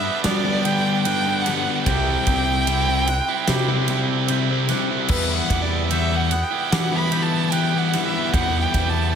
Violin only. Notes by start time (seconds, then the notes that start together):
Already playing: E5
0.24 D5
0.63 G5
1.03 G5
1.41 F#5
1.84 G5
5.10 B4
5.37 F#5
5.61 D5
5.90 E5
6.15 F#5
6.43 G5
6.70 F#5
6.97 B5
7.23 A5
7.51 G5
7.78 F#5
8.05 E5
8.34 F#5
8.61 G5
8.89 A5